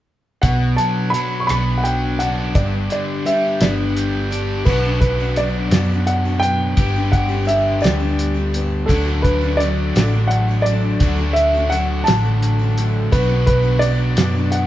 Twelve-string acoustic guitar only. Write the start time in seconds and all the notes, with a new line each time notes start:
0.43 B2 F#3 B3 D4 F#4
1.15 F#3 B3 D4 F#4
1.50 B2 F#3 B3 D4
2.21 D4 F#4
2.25 B3
2.55 G2 D3 G3 B3 D4 G4
3.26 G3 B3 D4 G4
3.62 G2 D3 G3 B3 D4 G4
4.31 G3 B3 D4 G4
4.66 B2 F#3 B3 D4 F#4
4.83 B3 D4 F#4
5.20 B3 D4 F#4
5.37 F#3 B3 D4 F#4
5.73 B2 F#3 B3 D4 F#4
5.92 B3 D4 F#4
6.25 B3 D4 F#4
6.42 F#3 B3 D4
6.77 G2 D3 G3 B3 D4 G4
6.95 G3 B3 D4 G4
7.29 G3 B3 D4 G4
7.45 G3 B3 D4 G4
7.81 G2 D3 G3 B3 D4 G4
7.99 G3 B3 D4 G4
8.34 G3 B3 D4 G4
8.54 G3 B3 D4 G4
8.89 D3 F#3 A3 D4 F#4
9.05 A3 D4 F#4
9.41 A3 D4 F#4
9.60 F#3 A3 D4 F#4
9.95 D3 F#3 A3 D4 F#4
10.12 A3 D4 F#4
10.49 A3 D4 F#4
10.66 F#3 A3 D4 F#4
11.02 D3 F#3 A3 D4 F#4
11.18 A3 D4 F#4
11.54 A3 D4 F#4
11.70 F#3 A3 D4 F#4
12.06 D3 F#3 A3 D4 F#4
12.23 A3 D4 F#4
12.59 D4 F#4
12.63 A3
12.77 F#3 A3 D4 F#4
13.12 B2 F#3 B3 D4 F#4
13.28 B3 D4 F#4
13.62 B3 D4 F#4
13.81 F#3 B3 D4
13.85 F#4
14.16 B2 F#3 B3 D4 F#4
14.35 B3 D4 F#4